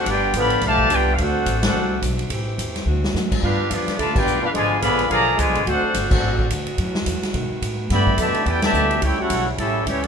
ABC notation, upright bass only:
X:1
M:4/4
L:1/8
Q:"Swing" 1/4=214
K:Glyd
V:1 name="Upright bass" clef=bass
G,,,2 A,,,2 B,,,2 =C,,2 | D,,2 A,,,2 =C,,2 B,,,2 | A,,,2 E,,2 D,,2 F,,2 | G,,2 =F,, z D,,2 B,,, z |
^G,,,2 _B,,,2 =B,,,2 (3C,, B,,, G,,, | D,, z G,,,2 A,,,2 D,,2 | F,,2 E,, z B,, z A,,2 | G,,2 F,, z E,,2 D,,2 |
C,, z B,,,2 A,,,2 C,,2 |]